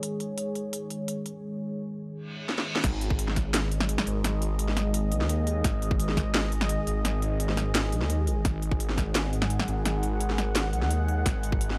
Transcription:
0.00 2.80 D#3 medium
0.00 2.80 G#3 medium
0.00 2.80 G#4 medium
0.00 2.80 C#5 medium
0.00 closed hi-hat medium
0.20 closed hi-hat soft
0.38 closed hi-hat medium
0.55 closed hi-hat soft
0.73 closed hi-hat medium
0.90 closed hi-hat soft
1.08 closed hi-hat medium
1.26 closed hi-hat soft
2.13 reverse cymbal medium
2.49 snare medium
2.58 snare medium
2.76 snare medium
2.84 3.97 G#1 loud
2.84 11.78 D#3 medium
2.84 11.78 G#3 medium
2.84 11.78 G#4 medium
2.84 8.43 D#5 medium
2.84 kick loud
2.84 snare medium
2.84 closed hi-hat medium
2.84 crash loud
3.01 closed hi-hat soft
3.10 kick loud
3.19 closed hi-hat medium
3.28 snare soft
3.36 kick medium
3.36 snare medium
3.36 closed hi-hat soft
3.54 snare loud
3.54 closed hi-hat medium
3.72 closed hi-hat soft
3.80 snare medium
3.89 closed hi-hat medium
3.98 snare medium
4.07 4.23 G#1 medium
4.07 closed hi-hat soft
4.24 5.13 G#1 loud
4.24 snare medium
4.24 closed hi-hat medium
4.42 closed hi-hat soft
4.59 closed hi-hat medium
4.68 snare soft
4.77 snare medium
4.77 closed hi-hat soft
4.94 closed hi-hat medium
5.12 5.22 B1 loud
5.12 closed hi-hat soft
5.21 5.63 D#2 loud
5.21 snare soft
5.29 closed hi-hat medium
5.47 closed hi-hat soft
5.64 6.78 G#1 loud
5.64 kick loud
5.64 snare medium
5.64 closed hi-hat medium
5.82 closed hi-hat soft
5.91 kick loud
6.00 closed hi-hat medium
6.09 snare soft
6.17 kick medium
6.17 snare soft
6.17 closed hi-hat soft
6.34 snare loud
6.52 closed hi-hat soft
6.61 snare medium
6.69 closed hi-hat medium
6.87 7.03 G#1 medium
6.87 closed hi-hat soft
7.05 7.94 G#1 loud
7.05 snare medium
7.05 closed hi-hat medium
7.22 closed hi-hat soft
7.40 closed hi-hat medium
7.49 snare soft
7.57 snare soft
7.57 closed hi-hat soft
7.75 snare loud
7.75 closed hi-hat medium
7.92 8.03 B1 loud
7.92 closed hi-hat soft
8.01 8.29 D#2 loud
8.01 snare soft
8.10 closed hi-hat medium
8.27 8.38 A1 medium
8.27 closed hi-hat soft
8.37 8.44 G#1 medium
8.45 9.58 G#1 loud
8.45 11.78 F#5 medium
8.45 kick loud
8.45 snare medium
8.45 closed hi-hat medium
8.62 closed hi-hat soft
8.72 kick loud
8.80 closed hi-hat medium
8.89 snare soft
8.97 kick medium
8.97 snare medium
8.97 closed hi-hat soft
9.15 snare loud
9.15 closed hi-hat medium
9.33 closed hi-hat soft
9.42 snare medium
9.50 closed hi-hat medium
9.59 snare medium
9.68 9.84 G#1 medium
9.68 closed hi-hat soft
9.85 10.74 G#1 loud
9.85 snare medium
9.85 closed hi-hat medium
10.03 closed hi-hat soft
10.21 closed hi-hat medium
10.30 snare soft
10.38 snare soft
10.38 closed hi-hat soft
10.55 snare loud
10.55 closed hi-hat medium
10.73 10.83 B1 loud
10.73 closed hi-hat soft
10.82 11.25 D#2 loud
10.82 snare soft
10.91 closed hi-hat medium
11.08 closed hi-hat soft
11.26 11.78 G#1 loud
11.26 kick loud
11.26 snare medium
11.26 closed hi-hat medium
11.43 closed hi-hat soft
11.52 kick loud
11.61 closed hi-hat medium
11.70 snare soft

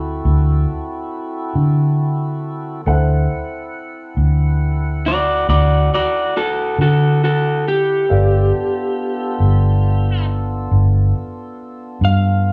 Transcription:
0.00 0.21 D2 medium
0.00 2.82 C4 medium
0.00 2.82 E4 medium
0.00 2.82 F#4 medium
0.00 2.81 A4 medium
0.00 2.83 C5 soft
0.00 2.83 E5 soft
0.25 0.65 D2 medium
1.55 2.82 D3 medium
2.86 3.27 D2 medium
2.86 8.06 C4 medium
2.86 8.06 E4 medium
2.86 8.06 A4 medium
2.86 8.06 C5 medium
2.86 8.06 E5 soft
2.86 8.06 F#5 medium
2.86 8.07 F#5 medium
4.17 5.44 D2 medium
5.06 5.48 F#4 medium
5.06 5.48 D5 medium
5.49 5.89 D2 medium
5.49 5.90 F#4 medium
5.49 5.91 D5 medium
5.94 6.34 F#4 medium
5.94 6.35 D5 medium
6.37 6.77 F#4 medium
6.37 6.79 A4 medium
6.79 8.06 D3 medium
6.79 7.21 F#4 medium
6.79 7.23 A4 medium
7.24 7.64 F#4 medium
7.24 7.66 A4 medium
7.68 10.25 G4 medium
8.08 8.51 G1 medium
8.08 12.53 B3 medium
8.08 12.53 D4 medium
8.08 12.53 F4 medium
8.08 12.53 A4 medium
8.08 12.53 A4 soft
8.08 12.53 B4 soft
8.08 12.53 D5 soft
8.08 12.53 F5 medium
9.40 10.67 G1 medium
10.71 11.12 G1 medium
12.01 12.53 G2 medium
12.01 12.53 F5 medium

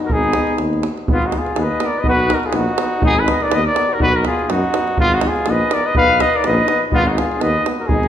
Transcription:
0.03 0.13 F#4 medium
0.03 0.14 A#4 medium
0.10 0.38 G#1 medium
0.10 0.87 B3 medium
0.10 0.87 D#4 medium
0.10 0.59 D#4 loud
0.10 0.60 G#4 loud
0.10 davul low medium
0.24 davul high soft
0.33 davul high medium
0.47 davul high soft
0.58 0.86 D#2 medium
0.58 davul high medium
0.73 davul high soft
0.83 davul high medium
0.97 davul high soft
1.07 1.35 G#1 medium
1.07 1.17 B3 medium
1.07 1.17 D#4 medium
1.07 davul low loud
1.12 1.27 B3 medium
1.12 1.28 F4 loud
1.22 1.39 D#4 medium
1.22 1.40 F#4 medium
1.22 davul high soft
1.30 1.40 B3 medium
1.30 1.41 D#4 medium
1.30 davul high medium
1.38 1.62 F4 medium
1.38 1.65 G#4 medium
1.46 davul high soft
1.55 1.69 D#2 loud
1.55 1.65 B3 medium
1.55 1.65 D#4 medium
1.55 davul high medium
1.61 1.84 B4 medium
1.61 1.88 D#5 medium
1.78 1.90 B3 medium
1.78 1.88 D#4 medium
1.78 davul high medium
1.83 1.99 A#4 medium
1.83 2.02 D5 medium
1.98 2.07 B4 medium
1.98 2.08 D#5 medium
2.03 2.31 B1 medium
2.03 2.14 B3 medium
2.03 2.14 D#4 medium
2.03 davul low medium
2.08 2.34 F#4 loud
2.08 2.36 B4 loud
2.19 davul high soft
2.28 2.39 B3 medium
2.28 2.38 D#4 medium
2.28 davul high medium
2.34 2.47 F#4 medium
2.34 2.48 A#4 medium
2.43 2.58 F4 medium
2.43 2.57 G#4 medium
2.43 davul high soft
2.53 2.66 A#1 loud
2.53 2.63 B3 medium
2.53 2.62 D#4 medium
2.53 3.03 F#4 medium
2.53 davul high medium
2.57 3.03 D#4 medium
2.77 2.88 B3 medium
2.77 2.87 D#4 medium
2.77 davul high medium
3.00 3.29 G#1 medium
3.00 3.13 B3 medium
3.00 3.10 D#4 medium
3.00 3.18 D#4 loud
3.00 davul low loud
3.06 3.21 G#4 loud
3.17 3.27 G#4 medium
3.17 3.28 B4 medium
3.17 davul high soft
3.23 3.34 D#4 medium
3.27 3.37 B3 medium
3.27 3.43 B4 medium
3.27 3.44 D#5 medium
3.27 davul high medium
3.40 3.52 A#4 medium
3.40 3.56 D5 medium
3.40 davul high soft
3.47 3.61 B3 medium
3.47 3.58 D#4 medium
3.47 3.62 B4 medium
3.52 3.65 D#2 loud
3.52 3.66 D#5 loud
3.52 davul high medium
3.63 3.90 A#4 medium
3.63 3.95 D5 loud
3.75 3.86 B3 medium
3.75 3.85 D#4 medium
3.75 davul high medium
3.89 3.99 F#4 medium
3.93 4.02 A#4 medium
3.99 4.27 B1 loud
3.99 4.10 B3 medium
3.99 4.09 D#4 medium
3.99 4.15 F#4 loud
3.99 4.18 B4 loud
3.99 davul low medium
4.13 4.25 F#4 medium
4.13 4.26 A#4 medium
4.13 davul high soft
4.22 4.34 B3 medium
4.22 4.32 D#4 medium
4.22 davul high medium
4.27 4.51 F4 medium
4.27 4.51 G#4 medium
4.39 davul high soft
4.48 4.63 F#2 loud
4.48 4.59 B3 medium
4.48 4.58 D#4 medium
4.48 4.98 D#4 medium
4.48 4.98 F#4 loud
4.48 davul high medium
4.64 davul high soft
4.73 4.84 B3 medium
4.73 4.83 D#4 medium
4.73 davul high medium
4.88 davul high soft
4.96 5.25 G#1 medium
4.96 5.16 B3 loud
4.96 5.09 B3 medium
4.96 5.06 D#4 medium
4.96 5.15 F4 loud
4.96 davul low loud
5.12 5.27 D#4 medium
5.12 5.29 F#4 loud
5.12 davul high soft
5.21 5.33 B3 medium
5.21 5.31 D#4 medium
5.21 davul high medium
5.25 5.52 F4 medium
5.25 5.51 G#4 medium
5.36 davul high soft
5.46 5.60 A#1 loud
5.46 5.57 B3 medium
5.46 5.56 D#4 medium
5.46 davul high medium
5.50 5.74 B4 medium
5.50 5.75 D#5 loud
5.71 5.82 B3 medium
5.71 5.81 D#4 medium
5.71 5.87 A#4 medium
5.71 5.88 D5 loud
5.71 davul high medium
5.85 5.96 B4 medium
5.85 5.96 D#5 loud
5.95 6.22 B1 medium
5.95 6.04 B3 medium
5.95 6.05 D#4 medium
5.95 6.22 B4 loud
5.95 6.23 F5 loud
5.95 davul low loud
6.09 davul high soft
6.19 6.29 B3 medium
6.19 6.29 D#4 medium
6.19 6.37 B4 loud
6.19 6.38 D#5 loud
6.19 davul high medium
6.34 6.47 A#4 medium
6.34 6.48 D5 medium
6.34 davul high soft
6.43 6.59 A#1 loud
6.43 6.53 B3 medium
6.43 6.53 D#4 medium
6.43 6.82 B4 medium
6.43 6.83 D#5 loud
6.43 davul high medium
6.65 6.77 B3 medium
6.65 6.76 D#4 medium
6.65 davul high medium
6.91 7.20 G#1 loud
6.91 7.01 B3 medium
6.91 7.08 B3 loud
6.91 7.01 D#4 medium
6.91 7.09 F4 loud
6.91 davul low loud
7.06 7.20 D#4 medium
7.06 7.18 F#4 medium
7.06 davul high soft
7.14 7.26 B3 medium
7.14 7.25 D#4 medium
7.14 7.43 G#4 medium
7.14 davul high medium
7.19 7.43 F4 medium
7.32 davul high soft
7.39 7.55 D#2 loud
7.39 7.50 B3 medium
7.39 7.49 D#4 medium
7.39 7.65 B4 medium
7.39 7.66 D#5 loud
7.39 davul high medium
7.62 7.75 B3 medium
7.62 7.73 D#4 medium
7.62 davul high medium
7.77 7.91 F#4 medium
7.77 7.88 A#4 medium
7.87 8.08 G#1 medium
7.87 7.99 B3 medium
7.87 7.98 D#4 medium
7.87 8.08 D#4 medium
7.87 8.08 G#4 loud
7.87 davul low loud
8.03 davul high soft

